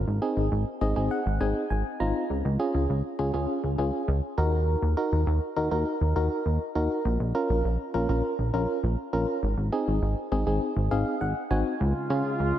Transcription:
0.07 G#1
0.22 C4 D#4 G#4
0.37 G#1
0.52 G#1
0.81 G#1 C4 D#4 G#4 D#5
0.96 G#1 C4 D#4 G#4
1.11 F#5
1.26 G#1
1.41 G#1 C4 D#4 G#4 G#5
1.70 G#1 G#5
2.00 G#1 C4 D#4 F4 A#5
2.30 C#2
2.45 C#2
2.60 C#4 F4 G#4
2.74 C#2
2.89 C#2
3.19 C#2 C#4 F4 G#4
3.34 C#2 C#4 F4 G#4
3.64 C#2
3.78 C#2 C#4 F4 G#4
4.08 C#2
4.38 D#2 D#4 F#4 A#4
4.82 D#2
4.97 D#4 F#4 A#4
5.12 D#2
5.27 D#2
5.56 D#2 D#4 F#4 A#4
5.71 D#2 D#4 F#4 A#4
6.01 D#2
6.16 D#2 D#4 F#4 A#4
6.46 D#2
6.75 D#2 D#4 F#4 A#4
7.05 A#1
7.20 A#1
7.35 C#4 F4 A#4
7.50 A#1
7.65 A#1
7.94 A#1 C#4 F4 A#4
8.09 A#1 C#4 F4 A#4
8.39 A#1
8.54 A#1 C#4 F4 A#4
8.83 A#1
9.13 A#1 C#4 F4 A#4
9.43 G#1
9.57 G#1
9.72 C4 D#4 G#4
9.87 G#1
10.02 G#1
10.32 G#1 C4 D#4 G#4
10.47 G#1 C4 D#4 G#4
10.76 G#1
10.91 G#1 C4 D#4 G#4 F5
11.21 G#1 F#5
11.51 G#1 C4 D#4 F#4 G#5
11.80 C#2 C#3 G#3 F4
12.10 C#3 C#4 F4 G#4
12.40 C#2

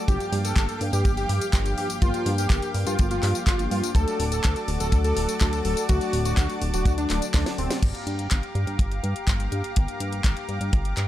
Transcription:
Already playing: D6
0.08 G1 G2 F3 A#3 D4 G4 F5 G5, kick, closed hi-hat, tambourine
0.20 closed hi-hat, tambourine
0.32 G2, open hi-hat
0.45 A4, closed hi-hat, tambourine
0.56 G1, kick, clap, closed hi-hat, tambourine
0.69 closed hi-hat, tambourine
0.81 G2, open hi-hat
0.93 G2 G4, closed hi-hat, tambourine
1.05 G1, kick, closed hi-hat, tambourine
1.17 G4, closed hi-hat, tambourine
1.29 G2, open hi-hat
1.41 closed hi-hat, tambourine
1.53 G1 G2 F3 A#3 D4 G4, kick, clap, closed hi-hat, tambourine
1.66 closed hi-hat, tambourine
1.78 G2 G4, open hi-hat
1.90 closed hi-hat, tambourine
2.02 G1 G2 F3 A#3 D4 F4 A#4, kick, closed hi-hat, tambourine
2.14 closed hi-hat, tambourine
2.26 G2, open hi-hat
2.38 G4, closed hi-hat, tambourine
2.50 G1, kick, clap, closed hi-hat, tambourine
2.62 closed hi-hat, tambourine
2.74 G2, open hi-hat
2.87 G2 F4, closed hi-hat, tambourine
2.99 G1, kick, closed hi-hat, tambourine
3.11 F4, closed hi-hat, tambourine
3.23 G2, clap, open hi-hat
3.35 closed hi-hat, tambourine
3.47 G1 F4, kick, clap, closed hi-hat, tambourine
3.59 G2 F3 A#3 D4 G4, closed hi-hat, tambourine
3.71 G2 F4, open hi-hat
3.83 closed hi-hat, tambourine
3.95 D2 F#3 A3 D4 F#4 A4 D5 A5 D6, kick, closed hi-hat, tambourine
4.08 closed hi-hat, tambourine
4.20 D1, open hi-hat
4.32 A4, closed hi-hat, tambourine
4.44 D2, kick, clap, closed hi-hat, tambourine
4.56 closed hi-hat, tambourine
4.68 D1, open hi-hat
4.80 D1 A4, closed hi-hat, tambourine
4.92 D2, kick, closed hi-hat, tambourine
5.04 A4, closed hi-hat, tambourine
5.16 D1, open hi-hat
5.29 closed hi-hat, tambourine
5.41 D2 F#3 A3 D4 A4, kick, clap, closed hi-hat, tambourine
5.53 closed hi-hat, tambourine
5.65 D1 A4, open hi-hat
5.77 closed hi-hat, tambourine
5.89 D2 F#3 A3 D4 F#4 D5, kick, closed hi-hat, tambourine
6.01 closed hi-hat, tambourine
6.13 D1, open hi-hat
6.25 F#4, closed hi-hat, tambourine
6.37 D2, kick, clap, closed hi-hat, tambourine
6.50 closed hi-hat, tambourine
6.62 D1, open hi-hat
6.74 D1 F#4, closed hi-hat, tambourine
6.85 D2, kick, closed hi-hat, tambourine
6.98 D4, closed hi-hat, tambourine
7.10 D1 F#3 A3 D4 D5, clap, open hi-hat
7.22 closed hi-hat, tambourine
7.34 D2 D4, kick, snare, clap, closed hi-hat, tambourine
7.46 snare, closed hi-hat, tambourine
7.58 D1 C4, open hi-hat
7.70 snare, closed hi-hat, tambourine
7.82 G1 G2 F3 A#3 D4 G4 F5 A#5 D6, kick, closed hi-hat, crash
7.95 closed hi-hat
8.07 G2, closed hi-hat
8.19 closed hi-hat
8.31 G1, kick, clap, closed hi-hat
8.43 closed hi-hat
8.55 G2, closed hi-hat
8.67 G2, closed hi-hat
8.79 G1, kick, closed hi-hat
8.91 closed hi-hat
9.03 G2, closed hi-hat
9.16 closed hi-hat
9.27 G1 G2 F3 A#3 D4 G4, kick, clap, closed hi-hat
9.40 closed hi-hat
9.52 G2, closed hi-hat
9.64 closed hi-hat
9.76 G1 G2 F3 A#3 D4 A#4, kick, closed hi-hat
9.88 closed hi-hat
10.00 G2, closed hi-hat
10.12 closed hi-hat
10.24 G1, kick, clap, closed hi-hat
10.37 closed hi-hat
10.49 G2, closed hi-hat
10.61 G2, closed hi-hat
10.73 G1, kick, closed hi-hat
10.85 closed hi-hat
10.97 G2, clap, closed hi-hat

